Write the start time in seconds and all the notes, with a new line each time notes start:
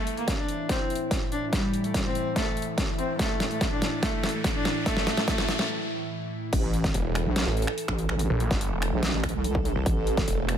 Already playing: A2 E3 E4, riser
0.07 closed hi-hat
0.17 A#3, closed hi-hat
0.28 kick, snare, closed hi-hat
0.38 D4
0.48 closed hi-hat
0.69 C4, kick, snare, closed hi-hat
0.90 closed hi-hat
0.95 closed hi-hat
1.11 kick, snare, closed hi-hat
1.32 D4, closed hi-hat
1.53 G3, kick, snare, closed hi-hat
1.74 closed hi-hat
1.84 A3, closed hi-hat
1.94 kick, snare, closed hi-hat
2.05 C4
2.15 closed hi-hat
2.36 A3, kick, snare, closed hi-hat
2.57 closed hi-hat
2.62 closed hi-hat
2.78 kick, snare, closed hi-hat
2.98 C4, closed hi-hat
3.19 A3, kick, snare, closed hi-hat
3.40 snare, closed hi-hat
3.51 A3, closed hi-hat
3.61 kick, snare, closed hi-hat
3.72 D4
3.82 snare, closed hi-hat
4.03 A3, kick, snare, closed hi-hat
4.24 snare, closed hi-hat
4.29 closed hi-hat
4.34 A3
4.44 kick, snare, closed hi-hat
4.55 D4
4.65 snare, closed hi-hat
4.86 A3, kick, snare, closed hi-hat
4.97 snare
5.07 snare, closed hi-hat
5.17 A3, snare, closed hi-hat
5.28 A3, kick, snare, closed hi-hat
5.38 snare, closed hi-hat
5.49 snare, closed hi-hat
5.59 A3, snare
6.53 A1 E3 A3 A4, kick, closed hi-hat, crash
6.74 closed hi-hat
6.84 kick, snare, closed hi-hat
6.94 E1, closed hi-hat
7.15 finger snap, closed hi-hat
7.26 A#1
7.36 snare, closed hi-hat
7.47 A1
7.57 closed hi-hat
7.62 closed hi-hat
7.67 finger snap
7.78 closed hi-hat
7.88 A1, finger snap, kick
7.99 closed hi-hat
8.09 A1, finger snap
8.19 closed hi-hat
8.30 A#1
8.40 closed hi-hat
8.51 G1, kick, snare, closed hi-hat
8.61 closed hi-hat
8.72 E1
8.82 finger snap, closed hi-hat
8.92 A#1
9.03 snare, closed hi-hat
9.13 A1
9.24 finger snap, kick, closed hi-hat
9.29 closed hi-hat
9.34 C2
9.44 closed hi-hat
9.55 kick
9.65 closed hi-hat
9.76 C2
9.86 A1, kick, closed hi-hat
10.07 closed hi-hat
10.17 kick, snare, closed hi-hat
10.28 E1, closed hi-hat
10.49 finger snap, closed hi-hat